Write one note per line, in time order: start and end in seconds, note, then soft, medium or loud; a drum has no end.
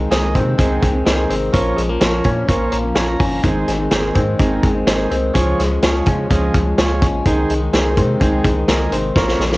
0.00 0.34 D#3 medium
0.00 0.81 G#3 soft
0.00 0.35 G#3 medium
0.00 0.35 C4 medium
0.11 0.37 C2 medium
0.11 0.58 D#3 medium
0.11 0.40 D#4 medium
0.11 0.40 G#4 medium
0.11 0.40 D#5 medium
0.11 snare medium
0.11 closed hi-hat medium
0.35 0.57 C3 medium
0.35 0.55 C3 loud
0.35 0.57 D#3 medium
0.35 0.58 G#3 medium
0.35 1.29 C4 medium
0.35 0.59 C4 medium
0.35 kick medium
0.35 closed hi-hat medium
0.58 0.78 C2 medium
0.58 0.94 C3 medium
0.58 0.94 D#3 medium
0.58 1.05 D#3 medium
0.58 0.94 G#3 medium
0.58 0.92 C4 medium
0.58 0.87 D#4 medium
0.58 0.87 G#4 medium
0.58 0.87 C5 medium
0.58 kick medium
0.58 closed hi-hat medium
0.82 1.02 C2 loud
0.82 1.59 G#3 medium
0.82 kick medium
0.82 closed hi-hat medium
0.93 1.29 D#3 medium
0.93 1.31 G#3 soft
0.93 1.30 C4 medium
1.06 1.26 C2 loud
1.06 1.53 D#3 medium
1.06 1.35 D#4 medium
1.06 1.35 G#4 medium
1.06 1.35 C5 medium
1.06 snare loud
1.06 closed hi-hat medium
1.30 1.50 G#1 loud
1.30 1.53 C3 medium
1.30 1.54 D#3 medium
1.30 1.55 G#3 medium
1.30 1.59 C4 medium
1.30 1.55 C4 medium
1.30 closed hi-hat medium
1.53 1.73 A#1 loud
1.53 1.90 A#2 medium
1.53 2.00 F3 medium
1.53 1.90 F3 medium
1.53 1.89 A#3 medium
1.53 1.88 C#4 medium
1.53 1.82 F4 loud
1.53 1.82 A#4 medium
1.53 1.82 C#5 loud
1.53 kick loud
1.53 closed hi-hat medium
1.76 1.97 A#1 loud
1.76 1.89 G#3 medium
1.76 closed hi-hat medium
1.89 2.24 F3 soft
1.89 2.71 A#3 soft
1.89 2.25 A#3 medium
1.89 2.25 C#4 medium
2.00 2.21 A#1 medium
2.00 2.47 F3 medium
2.00 2.30 F4 medium
2.00 2.30 A#4 medium
2.00 2.30 C#5 medium
2.00 snare loud
2.00 closed hi-hat medium
2.24 2.46 A#2 medium
2.24 2.45 A#2 loud
2.24 2.47 F3 medium
2.24 2.48 A#3 medium
2.24 3.18 C#4 medium
2.24 2.49 C#4 medium
2.24 kick medium
2.24 closed hi-hat medium
2.47 2.68 A#1 medium
2.47 2.84 A#2 medium
2.47 2.85 F3 medium
2.47 2.95 F3 soft
2.47 2.84 A#3 medium
2.47 2.82 C#4 medium
2.47 2.77 F4 medium
2.47 2.77 A#4 medium
2.47 2.77 C#5 medium
2.47 kick loud
2.47 closed hi-hat medium
2.72 2.92 A#1 medium
2.72 3.49 A#3 medium
2.72 closed hi-hat medium
2.83 3.19 F3 soft
2.83 3.20 A#3 soft
2.83 3.20 C#4 soft
2.95 3.16 A#1 medium
2.95 3.43 F3 soft
2.95 3.24 F4 medium
2.95 3.25 A#4 medium
2.95 3.25 C#5 medium
2.95 3.07 G#5 medium
2.95 snare loud
2.95 closed hi-hat medium
3.08 3.42 A#5 medium
3.19 3.40 G1 medium
3.19 3.42 A#2 medium
3.19 3.43 F3 medium
3.19 3.44 A#3 medium
3.19 3.49 C#4 medium
3.19 3.45 C#4 medium
3.19 kick medium
3.19 open hi-hat medium
3.43 3.63 G#1 medium
3.43 3.79 D#3 medium
3.43 3.91 D#3 medium
3.43 3.80 G#3 medium
3.43 3.79 C4 medium
3.43 3.72 D#4 medium
3.43 3.77 D#4 medium
3.43 3.72 G#4 loud
3.43 3.72 C5 loud
3.43 kick medium
3.43 closed hi-hat medium
3.68 3.88 G#1 loud
3.68 4.63 G#3 medium
3.68 snare soft
3.68 closed hi-hat medium
3.79 4.15 G#3 soft
3.79 4.15 C4 soft
3.79 4.15 D#4 medium
3.91 4.11 G#1 medium
3.91 4.38 D#3 medium
3.91 4.20 D#4 medium
3.91 4.20 G#4 medium
3.91 4.20 C5 medium
3.91 snare loud
3.91 closed hi-hat medium
4.15 4.38 G#2 medium
4.15 4.35 G#2 loud
4.15 4.38 D#3 medium
4.15 4.39 G#3 medium
4.15 5.09 C4 medium
4.15 4.40 C4 medium
4.15 4.40 D#4 medium
4.15 kick medium
4.15 closed hi-hat medium
4.39 4.59 G#1 loud
4.39 4.75 G#2 medium
4.39 4.86 D#3 medium
4.39 4.75 D#3 medium
4.39 4.76 G#3 medium
4.39 4.75 C4 medium
4.39 4.68 D#4 medium
4.39 4.73 D#4 medium
4.39 4.68 G#4 medium
4.39 4.68 A#4 medium
4.39 kick medium
4.39 closed hi-hat medium
4.63 4.83 G#1 loud
4.63 5.59 G#3 medium
4.63 kick medium
4.63 closed hi-hat medium
4.75 5.10 G#3 soft
4.75 5.11 C4 soft
4.75 5.11 D#4 medium
4.87 5.06 G#1 loud
4.87 5.35 D#3 medium
4.87 5.16 D#4 medium
4.87 5.16 G#4 medium
4.87 5.16 C5 medium
4.87 snare loud
4.87 closed hi-hat medium
5.10 5.31 C2 medium
5.10 5.34 D#3 medium
5.10 5.35 G#3 medium
5.10 5.39 C4 medium
5.10 5.35 C4 medium
5.10 5.36 D#4 medium
5.10 closed hi-hat medium
5.33 5.55 C#2 loud
5.33 5.70 C#3 medium
5.33 5.83 F3 medium
5.33 5.71 F3 medium
5.33 5.70 G#3 medium
5.33 5.69 C#4 medium
5.33 5.63 F4 loud
5.33 5.63 G#4 medium
5.33 5.63 C#5 loud
5.33 kick medium
5.33 closed hi-hat medium
5.59 5.79 C#2 loud
5.59 6.54 G#3 medium
5.59 snare soft
5.59 closed hi-hat medium
5.70 6.05 F3 soft
5.70 6.05 G#3 medium
5.70 6.06 C#4 medium
5.83 6.02 C#2 medium
5.83 6.29 F3 medium
5.83 6.11 F4 medium
5.83 6.11 G#4 medium
5.83 6.12 C#5 medium
5.83 snare loud
5.83 closed hi-hat medium
6.05 6.28 C#3 medium
6.05 6.26 C#3 medium
6.05 6.29 F3 medium
6.05 6.29 G#3 medium
6.05 6.30 C#4 medium
6.05 7.01 C#4 medium
6.05 kick medium
6.05 closed hi-hat medium
6.29 6.50 C#2 medium
6.29 6.65 C#3 medium
6.29 6.66 F3 medium
6.29 6.77 F3 medium
6.29 6.66 G#3 medium
6.29 6.64 C#4 loud
6.29 6.59 F4 medium
6.29 6.59 G#4 medium
6.29 6.59 D#5 medium
6.29 kick medium
6.29 closed hi-hat medium
6.54 6.74 C#2 loud
6.54 7.30 G#3 medium
6.54 kick medium
6.54 closed hi-hat medium
6.66 7.01 F3 soft
6.66 7.02 G#3 medium
6.66 7.01 C#4 medium
6.78 7.04 C#2 loud
6.78 7.26 F3 medium
6.78 7.07 F4 medium
6.78 7.07 G#4 medium
6.78 7.07 C#5 medium
6.78 snare loud
6.78 closed hi-hat medium
7.01 7.21 A#1 medium
7.01 7.25 C#3 medium
7.01 7.25 F3 medium
7.01 7.25 G#3 medium
7.01 7.30 C#4 medium
7.01 7.27 C#4 medium
7.01 kick medium
7.01 closed hi-hat medium
7.25 7.45 C2 loud
7.25 7.61 C3 medium
7.25 7.61 D#3 medium
7.25 7.73 D#3 medium
7.25 7.61 G#3 medium
7.25 7.54 D#4 loud
7.25 7.59 D#4 medium
7.25 7.54 G#4 loud
7.25 7.54 C5 loud
7.25 kick medium
7.25 closed hi-hat medium
7.50 7.69 C2 loud
7.50 8.44 G#3 medium
7.50 closed hi-hat medium
7.61 7.96 D#3 soft
7.61 7.97 G#3 medium
7.61 7.96 D#4 medium
7.73 7.99 C2 medium
7.73 8.21 D#3 medium
7.73 8.02 D#4 medium
7.73 8.02 G#4 medium
7.73 8.02 C5 medium
7.73 snare loud
7.73 closed hi-hat medium
7.96 8.19 C3 medium
7.96 8.17 C3 loud
7.96 8.20 D#3 medium
7.96 8.20 G#3 medium
7.96 8.91 C4 medium
7.96 8.21 D#4 medium
7.96 kick medium
7.96 closed hi-hat medium
8.20 8.40 C2 medium
8.20 8.56 C3 medium
8.20 8.56 D#3 medium
8.20 8.68 D#3 medium
8.20 8.57 G#3 medium
8.20 8.49 D#4 medium
8.20 8.54 D#4 loud
8.20 8.49 G#4 medium
8.20 8.49 C5 medium
8.20 kick medium
8.20 closed hi-hat medium
8.45 8.64 C2 medium
8.45 9.21 G#3 medium
8.45 kick medium
8.45 closed hi-hat medium
8.56 8.92 D#3 soft
8.56 8.92 G#3 soft
8.56 8.92 D#4 medium
8.68 8.88 C2 loud
8.68 9.15 D#3 medium
8.68 8.97 D#4 medium
8.68 8.97 G#4 medium
8.68 8.97 A#4 medium
8.68 snare loud
8.68 closed hi-hat medium
8.91 9.11 G#1 medium
8.91 9.14 C3 medium
8.91 9.15 D#3 medium
8.91 9.16 G#3 medium
8.91 9.21 C4 medium
8.91 9.17 D#4 medium
8.91 closed hi-hat medium
9.14 9.35 A#1 loud
9.14 9.51 A#2 medium
9.14 9.51 F3 medium
9.14 9.57 F3 medium
9.14 9.52 A#3 medium
9.14 9.50 C#4 medium
9.14 9.45 F4 loud
9.14 9.45 A#4 medium
9.14 9.45 C#5 loud
9.14 kick loud
9.14 snare medium
9.28 snare soft
9.39 9.57 A#1 loud
9.39 9.51 G#3 medium
9.39 snare soft
9.51 9.57 F3 soft
9.51 9.57 A#3 soft
9.51 9.57 A#3 medium
9.51 9.57 C#4 medium
9.51 snare soft